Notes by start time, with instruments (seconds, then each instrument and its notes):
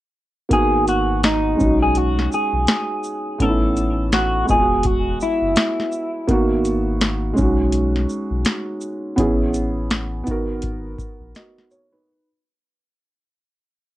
0.49 sub bass G#1, felt piano A#3 B3 D#4 F#4, kick, closed hi-hat
0.53 clean electric guitar G#4
0.88 clean electric guitar F#4, closed hi-hat, shaker
1.23 clean electric guitar D#4, snare, closed hi-hat
1.56 felt piano G#3 C#4
1.60 sub bass B1, felt piano D#4 F#4, kick, shaker
1.83 clean electric guitar G#4
1.95 clean electric guitar F#4, closed hi-hat
2.19 snare
2.32 clean electric guitar G#4, shaker
2.53 sub bass B1
2.67 snare, closed hi-hat
3.04 shaker
3.38 sub bass A1, felt piano A3 B3 C#4 D#4, clean electric guitar A4, kick, closed hi-hat
3.49 felt piano E4
3.77 closed hi-hat, shaker
4.12 clean electric guitar F#4, snare, closed hi-hat
4.45 felt piano G#3 B3, shaker
4.50 sub bass E1, felt piano F4 D#5, clean electric guitar G#4, kick
4.59 felt piano F#4
4.83 clean electric guitar F#4, kick, closed hi-hat
5.21 clean electric guitar E4, shaker
5.42 sub bass F#1
5.56 snare, closed hi-hat
5.80 snare
5.92 shaker
6.27 sub bass G#1, felt piano A#3 B3 D#4 F#4, kick, closed hi-hat
6.65 closed hi-hat, shaker
7.01 snare, closed hi-hat
7.33 felt piano G#3 C#4, shaker
7.39 sub bass B1, felt piano D#4 F#4, kick
7.72 closed hi-hat
7.96 snare
8.10 shaker
8.31 sub bass B1
8.45 snare, closed hi-hat
8.81 shaker
9.16 sub bass A1, felt piano B3 C#4 E4 G#4, kick, closed hi-hat
9.54 closed hi-hat, shaker
9.90 snare, closed hi-hat
10.23 felt piano B3 D#4, closed hi-hat, shaker
10.28 sub bass G#1, felt piano F#4 A#4, kick
10.62 kick, closed hi-hat
10.98 kick, shaker
11.20 sub bass A#1
11.35 felt piano F#4 D#5, snare, closed hi-hat
11.58 snare
11.71 felt piano C#5, shaker
11.92 felt piano D#4 B4